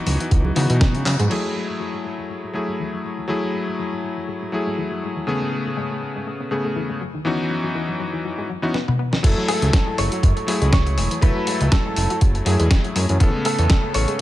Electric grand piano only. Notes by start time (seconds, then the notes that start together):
Already playing: E3 B3 D#4 F#4
0.55 E3 B3 D#4 F#4
1.30 F#3 A3 E4 G#4
2.53 F#3 A3 E4 G#4
3.28 F#3 A3 E4 G#4
4.52 F#3 A3 E4 G#4
5.27 C#3 A3 B3 G#4
6.51 C#3 A3 B3 G#4
7.25 E3 B3 C#4 D#4 F#4
8.62 E3 B3 C#4 D#4 F#4
9.23 F#3 A3 E4 A4
10.46 F#3 A3 E4 G#4
11.21 F#3 A3 E4 A4
12.45 F#3 A3 E4 G#4
13.20 C#3 A3 B3 A4